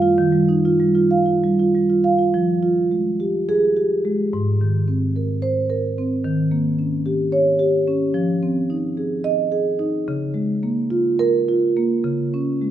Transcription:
Already playing: D#3 F5
0.02 F4
0.18 D#3
0.33 G3
0.49 D#4
0.65 F4
0.80 G3
0.95 F4
1.11 F5
1.26 F4
1.44 G3
1.59 F4
1.75 G3
1.90 F4
2.04 F5
2.19 F4
2.34 F3
2.63 F4
2.91 G#3
3.20 G4
3.49 G#4
3.77 G4
4.05 G#3
4.33 G#2
4.61 D#3
4.88 C4
5.16 A#4
5.42 C5
5.70 A#4
5.98 C4
6.25 D#3
6.51 A#3
6.79 C#4
7.06 G4
7.32 C#5
7.59 G4
7.88 C#4
8.14 F3
8.43 C4
8.70 D#4
8.97 G#4
9.24 D#5
9.52 G#4
9.79 D#4
10.08 C#3
10.34 G#3
10.63 A#3
10.90 F4
11.19 A#4
11.48 F4
11.77 A#3
12.04 C#3
12.34 C#4
12.61 G#3

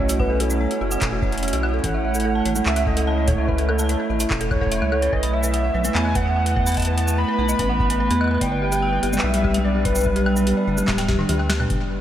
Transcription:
Already playing: B1 A3 C#4 E4 C#5 F#5
0.00 C#5
0.09 F#4, closed hi-hat, shaker
0.19 B4 F#5, kick
0.30 A4
0.40 F#4 A4, closed hi-hat
0.50 C#5, shaker
0.61 C#5
0.71 F#4, closed hi-hat
0.81 F#1 F#4
0.91 F#5, shaker
1.02 E1 A4, kick, clap, closed hi-hat
1.12 F#4
1.22 C#5, kick
1.32 C#5, closed hi-hat
1.38 closed hi-hat
1.43 F#4, closed hi-hat
1.48 closed hi-hat
1.53 B1 F#4, closed hi-hat
1.63 F#5, high woodblock
1.74 A4
1.84 A1 A4 F#5, kick, closed hi-hat
1.94 E5
2.05 E5
2.15 A4, shaker
2.20 closed hi-hat
2.25 A4
2.35 A5
2.45 A1 C#5, closed hi-hat
2.56 A4, high tom, shaker
2.66 C#2 E5, clap
2.76 E5, closed hi-hat, high woodblock
2.86 A4 D#5, kick
2.97 A4, closed hi-hat
3.07 A5
3.17 C#5
3.27 A4 C#5, kick, closed hi-hat
3.30 kick
3.33 kick
3.38 E5
3.48 B4 E5, kick
3.58 A4, closed hi-hat
3.69 A4, high woodblock
3.79 A5, shaker
3.89 C#5, closed hi-hat
4.00 A4
4.10 A1 E5
4.20 E5, closed hi-hat, shaker
4.30 E1 A4, kick, clap
4.41 A4, closed hi-hat
4.51 A4 C#5, kick, high woodblock
4.56 kick
4.61 A4, kick
4.66 kick
4.71 E5, closed hi-hat
4.82 C#2 E5, high woodblock
4.92 A4, high woodblock
5.02 B4, closed hi-hat
5.13 B1 B4 D#5, kick
5.23 B5, closed hi-hat
5.27 B3 B4
5.33 D#5 E5
5.43 B4, shaker
5.54 F#5, closed hi-hat
5.64 F#5
5.74 B1 B4
5.84 B4, closed hi-hat, high tom, shaker
5.95 E2 G#5 B5, clap
6.05 D#5, high woodblock
6.15 B4 F#5, kick, closed hi-hat
6.26 F#5
6.36 F#5
6.46 B4, closed hi-hat
6.56 B4, kick
6.67 B5, closed hi-hat, shaker
6.69 closed hi-hat
6.72 closed hi-hat
6.74 D#5, closed hi-hat
6.77 A5, kick, closed hi-hat
6.80 closed hi-hat
6.82 closed hi-hat
6.85 B4, closed hi-hat
6.97 F#5, closed hi-hat
7.08 F#5, shaker
7.18 B4 B5
7.28 B4
7.39 B1 B5
7.49 D#5, shaker
7.59 A1 B4, kick, closed hi-hat
7.69 F#5
7.80 F#5, kick
7.90 B4, closed hi-hat
8.00 B4
8.10 E2 B5, closed hi-hat
8.21 D#5, high woodblock
8.24 high woodblock
8.28 high woodblock
8.31 B4, high woodblock
8.34 high woodblock
8.38 G1 G3 D5 G5, kick, closed hi-hat, high woodblock
8.52 D4 D5
8.62 G4
8.72 G4, closed hi-hat, shaker
8.82 G5
8.93 B4
9.03 G1 G4, closed hi-hat
9.13 D5, high tom, shaker
9.18 clap
9.23 B1 D5 E5
9.34 G4, closed hi-hat
9.44 G4, kick, high tom
9.51 G5, closed hi-hat, high tom
9.58 high tom
9.65 B4 D5
9.75 G4
9.85 B4 D5, kick, closed hi-hat
9.95 D5, shaker
9.98 shaker
10.01 shaker
10.06 G4, kick
10.16 G4, closed hi-hat
10.26 G5, high woodblock
10.36 B4, shaker
10.47 G4, closed hi-hat
10.57 D5
10.67 G1 D5
10.78 G4, high tom, shaker
10.83 high tom
10.88 D1 G4, kick, snare, clap, high tom
10.98 G5, snare, closed hi-hat
11.08 D1 G4, kick, snare
11.12 kick
11.15 D4, kick, mid tom
11.29 D2 G4, closed hi-hat, mid tom
11.39 G5, high woodblock
11.49 G4, snare, high woodblock
11.60 B4, mid tom, high woodblock
11.70 F#1, kick, closed hi-hat

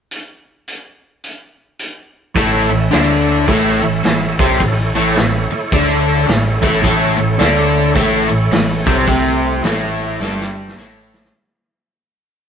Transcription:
0.11 closed hi-hat
0.68 closed hi-hat
1.24 closed hi-hat
1.79 closed hi-hat
2.35 A1 A2 A3 E4 A4 C#5 E5, kick, open hi-hat
2.71 A1 A2
2.91 D2 D3 D4, snare, open hi-hat
3.47 A1 A2 A3, kick, open hi-hat
3.83 A1 A2
4.04 A1 A2, snare, open hi-hat
4.39 C2 C3 C4, kick
4.60 A1 A2 E4 A4 C#5, kick, open hi-hat
4.95 A1 A2 A3
5.16 A1 A2, snare, open hi-hat
5.50 muted picked electric bass stroke, muted overdriven electric guitar stroke
5.72 D2 D3 D4, kick, open hi-hat
6.28 A1 A2, snare, open hi-hat
6.62 A1 A2 A3, kick
6.83 A1 A2 A3 E4 A4 C#5, kick, open hi-hat
7.18 A1 A2
7.39 D2 D3 D4, snare, open hi-hat
7.95 A1 A2 A3, kick, open hi-hat
8.29 A1 A2
8.52 A1 A2, snare, open hi-hat
8.86 C2 C3 C4, kick
9.07 C2 C3 A3 C4 E4, kick, open hi-hat
9.64 A1 A2 A3, snare, open hi-hat
10.20 G1 G2 G3, snare
10.40 snare
10.68 snare
10.76 A1 A2 A3, snare
11.14 snare
11.24 snare

